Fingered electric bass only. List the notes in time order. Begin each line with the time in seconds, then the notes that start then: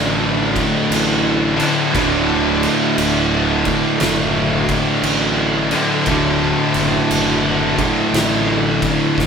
Already playing: A1
0.90 A1
1.95 D1
2.98 D1
4.01 F#1
5.03 A1
6.07 D1
6.75 F#1
7.10 F#1
8.13 A1
9.17 A1